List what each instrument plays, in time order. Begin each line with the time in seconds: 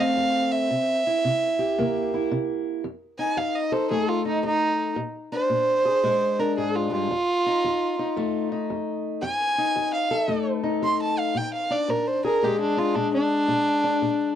Already playing: steel-string acoustic guitar F2 A3 A4
0.00 steel-string acoustic guitar C4, fiddle F5
0.17 steel-string acoustic guitar F2
0.52 fiddle E5
0.71 steel-string acoustic guitar C3
1.07 steel-string acoustic guitar E4
1.25 steel-string acoustic guitar C3
1.59 steel-string acoustic guitar G4
1.78 steel-string acoustic guitar C3 A#3
2.14 steel-string acoustic guitar E4
2.31 steel-string acoustic guitar C3
2.84 steel-string acoustic guitar F2
3.19 steel-string acoustic guitar D#4, fiddle G#5
3.37 steel-string acoustic guitar F2, fiddle F5
3.56 fiddle D#5
3.72 steel-string acoustic guitar A4, fiddle C5
3.91 steel-string acoustic guitar F2 A3, fiddle G#4
4.09 fiddle F4
4.25 steel-string acoustic guitar D#4, fiddle D#4
4.43 steel-string acoustic guitar F2, fiddle D#4
4.96 steel-string acoustic guitar A#2
5.32 steel-string acoustic guitar D4, fiddle C5
5.50 steel-string acoustic guitar A#2
5.85 steel-string acoustic guitar G#4
6.04 steel-string acoustic guitar A#2 G#3
6.39 steel-string acoustic guitar D4, fiddle A#4
6.58 steel-string acoustic guitar G#2, fiddle G#4
6.76 fiddle F4
6.92 steel-string acoustic guitar G2, fiddle F4
7.11 steel-string acoustic guitar F2
7.46 steel-string acoustic guitar D#4
7.64 steel-string acoustic guitar F2
7.99 steel-string acoustic guitar D#4
8.17 steel-string acoustic guitar F2 A3
8.52 steel-string acoustic guitar D#4
8.70 steel-string acoustic guitar F2
9.22 steel-string acoustic guitar F2, fiddle G#5
9.58 steel-string acoustic guitar D#4
9.76 steel-string acoustic guitar F2
9.94 fiddle F5
10.11 steel-string acoustic guitar A4
10.28 steel-string acoustic guitar F2 A3
10.63 steel-string acoustic guitar D#4
10.82 steel-string acoustic guitar F2, fiddle C6
11.02 fiddle A5
11.19 fiddle F5
11.35 steel-string acoustic guitar A#2, fiddle G5
11.54 fiddle F5
11.70 steel-string acoustic guitar D4, fiddle D5
11.88 steel-string acoustic guitar A#2, fiddle A#4
12.08 fiddle C5
12.24 steel-string acoustic guitar G#4, fiddle A#4
12.43 steel-string acoustic guitar A#2 G#3, fiddle G4
12.61 fiddle D4
12.77 steel-string acoustic guitar D4, fiddle F4
12.95 steel-string acoustic guitar A#2, fiddle D4
13.14 fiddle D4
13.48 steel-string acoustic guitar A#2
13.84 steel-string acoustic guitar D4
14.02 steel-string acoustic guitar A#2